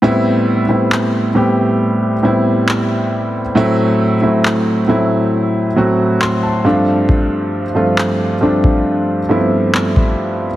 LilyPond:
<<
  \new Staff \with { instrumentName = "Grand piano" } { \time 4/4 \key a \minor \tempo 4 = 68 r1 | r2. c'''16 a''16 f''8 | r1 | }
  \new Staff \with { instrumentName = "Grand piano" } { \time 4/4 \key a \minor <a, g b c' e'>8. <a, g b c' e'>8. <a, g b c' g'>4 <a, g b c' e'>4~ <a, g b c' e'>16 r16 | <a, fis a c' e'>8. <a, fis a c' e'>8. <a, fis a c' e'>4 <a, fis a c' fis'>4 <g, f a c' d'>8~ | <g, f a c' d'>8 r16 <g, f a c' f'>8. <g, f a c' d'>4 <g, f a b c' e'>4~ <g, f a b c' e'>16 r16 | }
  \new DrumStaff \with { instrumentName = "Drums" } \drummode { \time 4/4 r4 hc4 r4 hc4 | r4 hc4 r4 hc4 | bd4 hc8. bd16 r4 hc16 bd8. | }
>>